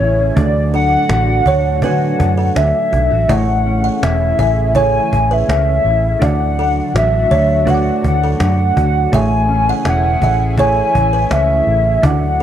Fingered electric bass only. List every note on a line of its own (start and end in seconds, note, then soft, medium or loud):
0.00 0.30 A1 medium
0.37 0.95 D2 loud
1.10 1.39 A1 medium
1.46 1.84 D2 medium
1.82 2.12 D3 loud
2.20 2.49 F#2 medium
2.56 2.71 D2 medium
2.93 3.08 B1 medium
3.12 3.26 A1 medium
3.29 3.88 A1 loud
4.03 4.32 E1 medium
4.39 4.97 A1 medium
5.13 5.42 A1 medium
5.48 5.78 C#2 medium
5.85 6.14 A1 medium
6.22 6.80 D2 loud
6.94 7.24 A1 loud
7.31 7.89 D2 loud
8.04 8.33 D2 medium
8.40 8.69 F#2 medium
8.77 9.06 D2 medium
9.13 9.71 A1 loud
9.86 10.15 E1 medium
10.22 10.80 A1 medium
10.95 11.24 A1 medium
11.31 11.60 C#2 loud
11.67 11.96 A1 medium
12.04 12.43 D2 loud